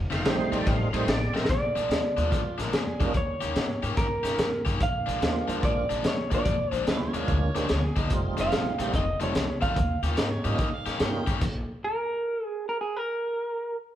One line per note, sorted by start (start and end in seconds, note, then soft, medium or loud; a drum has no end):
0.10 0.22 F1 medium
0.10 0.34 F2 medium
0.10 0.34 D#3 medium
0.10 0.34 A3 loud
0.10 0.33 C4 loud
0.10 0.13 E5 medium
0.10 snare soft
0.10 ride medium
0.16 0.28 F5 loud
0.25 0.46 A#1 medium
0.25 0.89 G3 medium
0.25 0.89 A3 medium
0.25 0.89 C4 medium
0.25 0.89 D#4 medium
0.25 0.54 C5 loud
0.25 snare loud
0.25 ride medium
0.52 0.63 A#1 medium
0.52 0.76 F2 medium
0.52 0.75 D#3 medium
0.52 0.75 A3 medium
0.52 0.75 C4 medium
0.52 0.68 D5 loud
0.52 ride medium
0.66 0.87 A1 loud
0.66 0.94 F5 medium
0.66 kick loud
0.66 snare soft
0.66 ride medium
0.93 1.04 A1 medium
0.93 1.17 F2 medium
0.93 1.16 D#3 medium
0.93 1.06 G3 medium
0.93 1.07 A3 medium
0.93 1.16 A3 medium
0.93 1.16 C4 loud
0.93 1.07 C4 medium
0.93 1.07 D#4 medium
0.93 1.09 C5 loud
0.93 ride medium
1.07 1.28 A1 medium
1.07 1.35 D5 loud
1.07 snare loud
1.07 ride loud
1.34 1.46 A1 loud
1.34 1.49 F2 medium
1.34 1.49 D#3 medium
1.34 1.49 A3 medium
1.34 1.49 C4 medium
1.34 1.49 A#4 loud
1.34 snare medium
1.45 snare loud
1.49 1.70 A#1 loud
1.49 3.17 D5 medium
1.49 kick loud
1.49 closed hi-hat medium
1.75 1.87 A#1 medium
1.75 1.99 A#2 medium
1.75 1.99 F3 medium
1.75 1.99 G#3 medium
1.75 1.98 D4 medium
1.75 closed hi-hat medium
1.90 2.11 D#2 medium
1.90 snare loud
1.90 closed hi-hat medium
2.17 2.28 D#2 medium
2.17 2.40 A#2 medium
2.17 2.40 F3 medium
2.17 2.40 G#3 medium
2.17 2.40 D4 medium
2.17 2.59 F4 medium
2.17 closed hi-hat medium
2.32 2.53 A#1 medium
2.32 kick medium
2.32 snare soft
2.32 closed hi-hat medium
2.58 2.69 A#1 medium
2.58 2.81 A#2 medium
2.58 2.81 F3 medium
2.58 2.81 G#3 medium
2.58 2.81 D4 medium
2.58 2.75 A#4 medium
2.58 snare soft
2.58 closed hi-hat medium
2.72 2.93 F2 medium
2.72 3.07 G#4 medium
2.72 snare loud
2.72 closed hi-hat medium
3.00 3.11 F2 medium
3.00 3.15 A#2 medium
3.00 3.15 F3 medium
3.00 3.13 G3 medium
3.00 3.14 G#3 medium
3.00 3.13 A#3 medium
3.00 3.13 C#4 medium
3.00 3.14 D4 medium
3.00 3.13 D#4 medium
3.00 3.13 F4 medium
3.00 kick medium
3.00 closed hi-hat medium
3.14 3.35 D#2 medium
3.14 3.97 C#5 medium
3.14 kick loud
3.14 closed hi-hat medium
3.41 3.52 D#2 medium
3.41 3.64 D#3 medium
3.41 3.64 A#3 medium
3.41 3.64 C#4 medium
3.41 3.64 G4 loud
3.41 closed hi-hat medium
3.56 3.76 G#2 medium
3.56 snare loud
3.56 closed hi-hat medium
3.83 3.94 G#2 medium
3.83 4.06 D#3 medium
3.83 4.06 A#3 medium
3.83 4.05 C#4 medium
3.83 4.05 G4 medium
3.83 closed hi-hat medium
3.97 4.18 G2 medium
3.97 4.62 A#4 medium
3.97 kick loud
3.97 snare soft
3.97 closed hi-hat medium
4.23 4.35 G2 medium
4.23 4.47 D#3 medium
4.23 4.47 A#3 medium
4.23 4.46 C#4 medium
4.23 4.46 G4 medium
4.23 snare soft
4.23 closed hi-hat medium
4.38 4.59 G2 medium
4.38 snare loud
4.38 closed hi-hat medium
4.65 4.77 G2 medium
4.65 4.80 D#3 medium
4.65 4.80 A#3 medium
4.65 4.80 C#4 medium
4.65 4.80 G4 medium
4.65 kick medium
4.65 closed hi-hat medium
4.80 5.01 A#1 loud
4.80 5.65 F5 loud
4.80 kick loud
4.80 closed hi-hat medium
5.06 5.18 A#1 medium
5.06 5.30 A#2 medium
5.06 5.30 F3 medium
5.06 5.29 G#3 medium
5.06 5.29 D4 loud
5.06 closed hi-hat medium
5.21 5.42 D#2 medium
5.21 5.85 G#3 medium
5.21 5.85 A#3 medium
5.21 5.85 C4 medium
5.21 5.85 D4 medium
5.21 5.85 F4 medium
5.21 snare loud
5.21 closed hi-hat medium
5.48 5.59 D#2 medium
5.48 5.71 A#2 medium
5.48 5.71 F3 medium
5.48 5.70 G#3 medium
5.48 5.70 D4 medium
5.48 closed hi-hat medium
5.63 5.84 A#1 medium
5.63 6.06 D5 loud
5.63 kick loud
5.63 closed hi-hat medium
5.90 6.01 A#1 medium
5.90 6.13 A#2 medium
5.90 6.13 F3 medium
5.90 6.12 G#3 loud
5.90 6.12 D4 medium
5.90 closed hi-hat medium
6.03 6.24 F2 medium
6.03 6.34 C#5 medium
6.03 snare loud
6.03 closed hi-hat medium
6.31 6.42 F2 medium
6.31 6.54 A#2 medium
6.31 6.54 F3 medium
6.31 6.53 G#3 medium
6.31 6.44 G#3 medium
6.31 6.45 A#3 medium
6.31 6.45 C4 medium
6.31 6.53 D4 medium
6.31 6.45 D4 medium
6.31 6.45 F4 medium
6.31 6.73 D5 medium
6.31 kick medium
6.31 closed hi-hat medium
6.45 6.66 A#1 loud
6.45 kick loud
6.45 closed hi-hat medium
6.72 6.83 A#1 medium
6.72 6.95 A#2 medium
6.72 6.95 F3 medium
6.72 6.95 G#3 medium
6.72 6.95 D4 medium
6.72 6.85 C5 medium
6.72 closed hi-hat medium
6.87 7.07 D#2 medium
6.87 7.12 G3 medium
6.87 7.12 A3 soft
6.87 7.12 B3 soft
6.87 7.12 C#4 medium
6.87 7.12 E4 medium
6.87 7.01 F5 medium
6.87 snare loud
6.87 closed hi-hat medium
7.02 7.86 C#5 medium
7.14 7.25 D#2 medium
7.14 7.37 A#2 medium
7.14 7.36 F3 medium
7.14 7.36 G#3 medium
7.14 7.51 G#3 medium
7.14 7.51 A#3 medium
7.14 7.36 D4 medium
7.14 7.51 D4 medium
7.14 7.51 F4 medium
7.14 closed hi-hat medium
7.28 7.49 D2 medium
7.28 kick loud
7.28 closed hi-hat medium
7.55 7.66 D2 medium
7.55 7.78 A#2 medium
7.55 7.78 F3 medium
7.55 7.68 G#3 medium
7.55 7.78 G#3 medium
7.55 7.68 A#3 medium
7.55 7.68 C4 medium
7.55 7.78 D4 medium
7.55 7.68 D4 medium
7.55 7.69 G4 medium
7.55 snare soft
7.55 closed hi-hat medium
7.69 7.91 D2 medium
7.69 snare loud
7.69 closed hi-hat medium
7.85 8.00 G#4 medium
7.96 8.07 D2 medium
7.96 8.11 A#2 medium
7.96 8.11 F3 medium
7.96 8.11 G#3 medium
7.96 8.11 D4 medium
7.96 8.20 D#4 medium
7.96 kick medium
7.96 closed hi-hat medium
8.10 8.32 F1 loud
8.10 8.74 G3 medium
8.10 8.74 A3 medium
8.10 8.75 C4 medium
8.10 8.75 D#4 medium
8.10 8.75 F4 medium
8.10 kick loud
8.10 closed hi-hat medium
8.37 8.49 F1 medium
8.37 8.61 F2 medium
8.37 8.61 D#3 medium
8.37 8.60 A3 medium
8.37 8.60 C4 medium
8.37 8.95 F5 loud
8.37 snare soft
8.37 closed hi-hat medium
8.52 8.73 A#1 medium
8.52 snare loud
8.52 closed hi-hat medium
8.79 8.90 A#1 medium
8.79 9.02 F2 medium
8.79 9.02 D#3 medium
8.79 8.93 G3 medium
8.79 9.02 A3 medium
8.79 8.93 A3 medium
8.79 9.02 C4 medium
8.79 8.93 C4 medium
8.79 8.93 D#4 medium
8.79 8.93 G4 medium
8.79 closed hi-hat medium
8.93 9.15 F1 medium
8.93 9.23 D#5 loud
8.93 kick loud
8.93 snare soft
8.93 closed hi-hat medium
9.20 9.31 F1 medium
9.20 9.43 F2 medium
9.20 9.43 D#3 medium
9.20 9.34 G3 medium
9.20 9.43 A3 medium
9.20 9.34 A3 medium
9.20 9.43 C4 loud
9.20 9.34 C4 medium
9.20 9.34 D#4 medium
9.20 9.34 F4 medium
9.20 9.62 C#5 medium
9.20 closed hi-hat medium
9.34 9.55 C2 medium
9.34 snare loud
9.34 closed hi-hat medium
9.61 9.76 F2 medium
9.61 9.73 F2 medium
9.61 9.76 D#3 medium
9.61 9.76 A3 medium
9.61 9.76 C4 medium
9.61 10.01 F5 medium
9.61 kick medium
9.61 closed hi-hat medium
9.76 9.97 D#2 medium
9.76 kick loud
9.76 closed hi-hat medium
10.02 10.14 D#2 medium
10.02 10.27 D#3 medium
10.02 10.26 A#3 medium
10.02 10.26 C#4 medium
10.02 10.20 F4 medium
10.02 10.26 G4 medium
10.02 closed hi-hat medium
10.17 10.38 G#2 medium
10.17 10.33 A#4 medium
10.17 snare loud
10.17 closed hi-hat medium
10.32 10.47 C#5 medium
10.44 10.56 G#2 medium
10.44 10.68 D#3 medium
10.44 10.58 G3 medium
10.44 10.58 A#3 medium
10.44 10.68 A#3 medium
10.44 10.67 C#4 medium
10.44 10.58 C#4 medium
10.44 10.59 D#4 medium
10.44 10.59 F4 medium
10.44 10.67 G4 medium
10.44 10.75 D#5 medium
10.44 closed hi-hat medium
10.58 10.80 G2 medium
10.58 kick loud
10.58 snare soft
10.58 closed hi-hat medium
10.74 11.00 F5 medium
10.86 10.97 G2 medium
10.86 11.09 D#3 medium
10.86 11.09 A#3 medium
10.86 11.09 C#4 medium
10.86 11.09 G4 medium
10.86 snare soft
10.86 closed hi-hat medium
11.00 11.21 G2 medium
11.00 11.26 G3 medium
11.00 11.26 A#3 medium
11.00 11.26 C#4 medium
11.00 11.26 D#4 medium
11.00 11.26 F4 medium
11.00 11.34 G5 loud
11.00 snare loud
11.00 closed hi-hat medium
11.27 11.38 G2 medium
11.27 11.42 D#3 medium
11.27 11.42 A#3 medium
11.27 11.42 C#4 medium
11.27 11.41 G4 medium
11.27 kick medium
11.27 closed hi-hat medium
11.41 11.62 A#1 loud
11.41 kick loud
11.41 closed hi-hat medium
11.41 crash medium
11.84 12.45 A#4 loud
12.45 12.64 G#4 loud
12.69 12.81 A#4 medium
12.81 12.97 G#4 medium
12.97 13.75 A#4 medium